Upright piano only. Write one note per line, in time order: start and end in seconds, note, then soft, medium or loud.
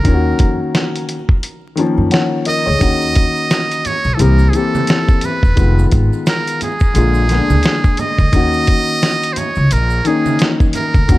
0.03 1.15 D#3 medium
0.03 1.16 A#3 medium
0.03 1.17 C#4 medium
0.03 0.14 F4 medium
0.14 1.21 F#4 medium
1.75 2.61 D#3 medium
1.75 2.63 F3 medium
1.75 2.62 A#3 medium
1.75 2.62 C#4 medium
2.12 2.45 C#5 medium
2.12 2.45 F#5 medium
2.46 2.66 A#4 medium
2.46 2.65 D#5 medium
2.66 2.99 G#4 medium
2.66 2.99 C#5 medium
2.79 3.91 D#3 medium
2.79 3.92 A#3 medium
2.79 3.92 C#4 medium
2.79 3.93 F#4 medium
4.17 4.47 E3 medium
4.17 4.47 A#3 medium
4.17 4.48 C4 medium
4.17 4.48 G4 medium
4.52 5.37 E3 medium
4.52 5.38 A#3 medium
4.52 5.39 C4 medium
4.56 5.39 G4 medium
5.55 6.67 D#3 medium
5.55 6.68 G#3 medium
5.55 6.68 B3 medium
5.55 6.69 F4 medium
6.94 7.23 D3 medium
6.94 7.24 G#3 medium
6.94 7.24 A#3 medium
6.94 7.25 F4 medium
7.28 8.13 D3 medium
7.28 8.14 G#3 medium
7.28 8.15 A#3 medium
7.28 7.38 B3 medium
7.38 8.18 D4 medium
8.32 9.43 D#3 medium
8.32 9.44 A#3 medium
8.32 9.44 C#4 medium
8.32 9.45 F#4 medium
10.04 10.89 D#3 medium
10.04 10.90 A#3 medium
10.04 10.91 C#4 medium
10.04 10.91 D#4 medium
11.08 11.18 D#3 medium
11.08 11.18 A#3 medium
11.08 11.18 C#4 medium
11.08 11.18 F#4 medium